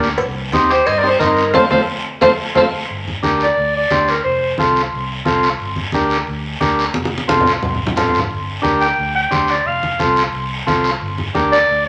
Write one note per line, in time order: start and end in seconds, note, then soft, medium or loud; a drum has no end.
0.00 0.21 D2 loud
0.00 short guiro medium
0.18 0.53 C2 medium
0.18 cowbell loud
0.18 long guiro medium
0.52 0.80 D#2 medium
0.52 0.71 C4 loud
0.52 0.71 D#4 medium
0.52 0.71 G4 loud
0.52 cowbell medium
0.52 high conga medium
0.52 short guiro medium
0.71 0.87 G4 medium
0.71 0.88 C5 medium
0.71 short guiro medium
0.86 1.14 G2 medium
0.86 0.98 C5 medium
0.86 0.99 D#5 loud
0.86 cowbell medium
0.86 long guiro medium
0.98 1.09 A#4 medium
0.98 1.09 D5 medium
1.03 1.09 C4 medium
1.03 1.09 D#4 medium
1.03 1.10 G4 medium
1.08 1.20 G4 medium
1.08 1.19 C5 medium
1.19 1.54 G2 medium
1.19 1.44 C4 medium
1.19 1.51 D#4 medium
1.19 1.45 D#4 medium
1.19 1.51 A#4 medium
1.19 1.45 A#4 medium
1.19 cowbell medium
1.19 high conga medium
1.19 short guiro medium
1.37 short guiro medium
1.53 1.67 F2 medium
1.53 1.66 A3 medium
1.53 1.66 C4 medium
1.53 1.65 F4 loud
1.53 1.66 F4 medium
1.53 1.66 A4 medium
1.53 1.62 C5 medium
1.53 1.65 C5 medium
1.53 high conga medium
1.53 high timbale loud
1.53 long guiro medium
1.70 1.84 F2 medium
1.70 1.82 A3 loud
1.70 1.82 C4 loud
1.70 1.82 F4 loud
1.70 1.82 F4 medium
1.70 1.82 A4 medium
1.70 1.82 C5 loud
1.70 1.79 C5 medium
1.70 high conga medium
1.70 high timbale medium
1.70 long guiro loud
2.21 2.34 F2 medium
2.21 2.32 A3 medium
2.21 2.32 C4 medium
2.21 2.32 F4 medium
2.21 2.33 F4 medium
2.21 2.33 A4 medium
2.21 2.30 C5 loud
2.21 2.33 C5 medium
2.21 high conga loud
2.21 high timbale loud
2.21 long guiro medium
2.55 2.69 F2 medium
2.55 2.66 A3 medium
2.55 2.66 C4 medium
2.55 2.66 F4 loud
2.55 2.68 F4 loud
2.55 2.68 A4 medium
2.55 2.64 C5 medium
2.55 2.68 C5 medium
2.55 high conga loud
2.55 high timbale medium
2.55 long guiro loud
2.89 3.17 G1 medium
2.89 long guiro medium
3.08 high conga medium
3.23 3.50 D2 medium
3.23 3.47 D4 medium
3.23 3.47 G4 medium
3.23 3.47 A#4 medium
3.23 high conga medium
3.23 short guiro medium
3.40 3.73 D5 loud
3.40 short guiro medium
3.57 3.84 D2 medium
3.57 long guiro medium
3.77 4.11 D5 medium
3.91 4.18 D2 medium
3.91 4.14 D4 medium
3.91 4.14 G4 medium
3.91 4.15 C5 medium
3.91 high conga medium
3.91 short guiro medium
4.08 4.23 A#4 medium
4.08 short guiro medium
4.24 4.52 F1 loud
4.24 4.55 C5 medium
4.24 long guiro medium
4.58 4.86 C2 medium
4.58 4.82 C4 medium
4.58 4.82 F4 medium
4.58 4.83 A4 medium
4.58 high conga medium
4.58 short guiro medium
4.76 short guiro medium
4.93 5.20 C2 medium
4.93 long guiro medium
5.25 5.53 C2 medium
5.25 5.49 C4 medium
5.25 5.49 F4 medium
5.25 5.50 A4 medium
5.25 high conga medium
5.25 short guiro medium
5.43 short guiro medium
5.60 5.87 G1 medium
5.60 long guiro medium
5.76 high conga medium
5.92 6.21 D2 medium
5.92 6.18 D4 loud
5.92 6.18 G4 medium
5.92 6.18 A#4 loud
5.92 high conga medium
5.92 short guiro medium
6.10 short guiro medium
6.27 6.54 D2 medium
6.27 long guiro medium
6.60 6.88 D2 medium
6.60 6.85 D4 medium
6.60 6.85 G4 medium
6.60 6.85 A#4 medium
6.60 high conga medium
6.60 short guiro medium
6.79 short guiro medium
6.94 7.22 F1 loud
6.94 high conga medium
6.94 long guiro medium
7.05 high conga medium
7.18 high conga medium
7.28 7.56 C2 medium
7.28 7.52 C4 medium
7.28 7.53 F4 medium
7.28 7.53 A4 loud
7.28 high conga loud
7.28 short guiro medium
7.41 low conga medium
7.46 short guiro medium
7.62 7.76 C2 medium
7.62 low conga loud
7.62 long guiro medium
7.75 7.94 C2 medium
7.75 low conga medium
7.87 low conga medium
7.96 8.11 A1 medium
7.96 8.20 C4 medium
7.96 8.20 F4 medium
7.96 8.21 A4 medium
7.96 low conga medium
7.96 short guiro medium
8.08 low conga medium
8.12 8.28 G1 medium
8.12 short guiro medium
8.19 low conga medium
8.30 8.57 G1 loud
8.30 long guiro medium
8.62 8.91 D2 medium
8.62 8.87 D4 medium
8.62 8.87 G4 medium
8.62 8.87 A#4 loud
8.62 high conga medium
8.62 short guiro medium
8.81 9.13 G5 loud
8.81 short guiro medium
8.97 9.25 D2 medium
8.97 long guiro medium
9.15 9.52 G5 medium
9.31 9.59 D2 medium
9.31 9.55 D4 medium
9.31 9.55 G4 medium
9.31 9.55 C5 medium
9.31 high conga medium
9.31 short guiro medium
9.47 9.68 D5 medium
9.47 short guiro medium
9.64 9.92 F1 loud
9.64 10.00 F5 medium
9.64 long guiro medium
9.83 high conga medium
9.99 10.26 C2 medium
9.99 10.23 C4 medium
9.99 10.23 F4 medium
9.99 10.23 A4 medium
9.99 high conga medium
9.99 short guiro medium
10.16 short guiro medium
10.33 10.60 C2 medium
10.33 long guiro medium
10.66 10.94 C2 medium
10.66 10.91 C4 medium
10.66 10.91 F4 medium
10.66 10.91 A4 medium
10.66 high conga medium
10.66 short guiro medium
10.84 short guiro medium
11.01 11.28 G1 loud
11.01 long guiro medium
11.18 high conga medium
11.34 11.62 D2 medium
11.34 11.58 D4 medium
11.34 11.58 G4 medium
11.34 11.59 A#4 medium
11.34 high conga medium
11.34 short guiro medium
11.52 11.83 D5 loud
11.52 short guiro medium
11.69 11.88 D2 medium
11.69 long guiro medium